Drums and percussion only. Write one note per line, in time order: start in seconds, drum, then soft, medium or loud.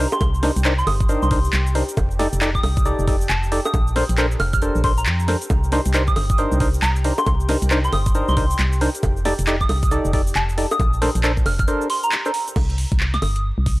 0.12 high bongo medium
0.12 shaker medium
0.21 kick loud
0.21 closed hi-hat medium
0.21 high bongo medium
0.21 shaker medium
0.34 shaker soft
0.43 snare medium
0.43 open hi-hat loud
0.56 closed hi-hat medium
0.56 shaker medium
0.65 clap loud
0.65 closed hi-hat medium
0.65 shaker medium
0.79 shaker soft
0.87 open hi-hat medium
0.87 high bongo medium
1.01 kick loud
1.01 closed hi-hat medium
1.01 shaker medium
1.09 closed hi-hat medium
1.09 shaker medium
1.23 shaker soft
1.31 kick loud
1.31 open hi-hat loud
1.45 shaker medium
1.53 clap loud
1.53 closed hi-hat medium
1.53 shaker medium
1.67 shaker soft
1.75 open hi-hat loud
1.89 closed hi-hat soft
1.89 shaker medium
1.97 kick loud
1.97 closed hi-hat medium
1.97 high bongo medium
1.97 shaker medium
2.11 shaker soft
2.19 snare medium
2.19 open hi-hat loud
2.33 closed hi-hat medium
2.33 shaker medium
2.41 clap loud
2.41 closed hi-hat medium
2.41 shaker soft
2.55 kick medium
2.55 shaker soft
2.63 open hi-hat medium
2.63 high bongo medium
2.77 kick loud
2.77 closed hi-hat medium
2.77 shaker medium
2.85 closed hi-hat medium
2.85 shaker medium
2.99 shaker soft
3.08 kick loud
3.08 open hi-hat loud
3.21 shaker medium
3.30 clap loud
3.30 closed hi-hat medium
3.30 shaker medium
3.43 shaker soft
3.52 open hi-hat medium
3.65 closed hi-hat soft
3.65 high bongo medium
3.65 shaker medium
3.74 kick loud
3.74 closed hi-hat medium
3.74 high bongo medium
3.74 shaker medium
3.87 shaker soft
3.96 snare medium
3.96 open hi-hat loud
4.09 closed hi-hat medium
4.09 shaker medium
4.18 clap loud
4.18 closed hi-hat medium
4.18 shaker medium
4.31 shaker soft
4.40 open hi-hat medium
4.40 high bongo medium
4.53 kick loud
4.53 closed hi-hat medium
4.53 shaker medium
4.62 closed hi-hat medium
4.62 shaker medium
4.75 shaker soft
4.84 kick loud
4.84 open hi-hat loud
4.98 closed hi-hat soft
4.98 shaker medium
5.06 clap loud
5.06 closed hi-hat medium
5.06 shaker medium
5.20 shaker soft
5.28 snare medium
5.28 open hi-hat medium
5.42 closed hi-hat soft
5.42 shaker medium
5.50 kick loud
5.50 closed hi-hat medium
5.50 high bongo medium
5.50 shaker medium
5.64 shaker soft
5.72 snare medium
5.72 open hi-hat loud
5.86 closed hi-hat medium
5.86 shaker medium
5.94 clap loud
5.94 closed hi-hat medium
5.94 shaker medium
6.08 kick medium
6.08 shaker soft
6.16 open hi-hat medium
6.16 high bongo medium
6.30 kick loud
6.30 closed hi-hat medium
6.30 shaker medium
6.38 closed hi-hat medium
6.38 shaker medium
6.52 shaker soft
6.60 kick loud
6.60 open hi-hat loud
6.74 shaker medium
6.82 clap loud
6.82 closed hi-hat medium
6.82 shaker medium
6.96 shaker soft
7.04 open hi-hat medium
7.18 closed hi-hat soft
7.18 high bongo medium
7.18 shaker medium
7.26 kick loud
7.26 closed hi-hat medium
7.26 high bongo medium
7.26 shaker medium
7.40 shaker soft
7.49 snare medium
7.49 open hi-hat loud
7.62 closed hi-hat medium
7.62 shaker medium
7.71 clap loud
7.71 closed hi-hat medium
7.71 shaker medium
7.84 shaker soft
7.93 open hi-hat medium
7.93 high bongo medium
8.06 kick loud
8.06 closed hi-hat medium
8.06 shaker medium
8.15 closed hi-hat medium
8.15 shaker medium
8.28 shaker soft
8.37 kick loud
8.37 open hi-hat loud
8.50 shaker medium
8.59 clap loud
8.59 closed hi-hat medium
8.73 shaker soft
8.81 open hi-hat medium
8.95 closed hi-hat soft
8.95 shaker medium
9.03 kick loud
9.03 closed hi-hat medium
9.03 high bongo medium
9.03 shaker medium
9.17 shaker soft
9.25 snare medium
9.25 open hi-hat loud
9.39 closed hi-hat medium
9.39 shaker medium
9.47 clap loud
9.47 closed hi-hat medium
9.47 shaker medium
9.61 kick medium
9.61 shaker soft
9.69 open hi-hat loud
9.69 high bongo medium
9.83 kick loud
9.83 closed hi-hat medium
9.83 shaker medium
9.91 closed hi-hat medium
9.91 shaker medium
10.05 shaker soft
10.13 kick loud
10.13 open hi-hat loud
10.27 shaker medium
10.35 clap loud
10.35 closed hi-hat medium
10.35 shaker medium
10.49 shaker soft
10.58 open hi-hat loud
10.71 closed hi-hat soft
10.71 high bongo medium
10.71 shaker medium
10.80 kick loud
10.80 closed hi-hat medium
10.80 high bongo medium
10.80 shaker medium
10.93 shaker soft
11.02 snare medium
11.02 open hi-hat loud
11.15 closed hi-hat medium
11.15 shaker medium
11.24 clap loud
11.24 closed hi-hat medium
11.24 shaker medium
11.37 kick medium
11.37 shaker soft
11.46 open hi-hat loud
11.46 high bongo medium
11.59 kick loud
11.59 closed hi-hat medium
11.59 shaker medium
11.68 closed hi-hat medium
11.68 shaker medium
11.81 shaker soft
11.90 open hi-hat loud
12.03 closed hi-hat soft
12.03 shaker medium
12.12 clap loud
12.12 closed hi-hat medium
12.12 shaker medium
12.25 shaker soft
12.34 open hi-hat loud
12.48 closed hi-hat soft
12.48 shaker medium
12.56 kick loud
12.56 crash loud
12.56 high bongo medium
12.70 closed hi-hat medium
12.78 open hi-hat loud
12.92 kick loud
12.92 closed hi-hat medium
13.00 clap loud
13.14 snare medium
13.14 closed hi-hat soft
13.22 open hi-hat loud
13.22 high bongo medium
13.36 closed hi-hat medium
13.66 kick loud
13.66 open hi-hat loud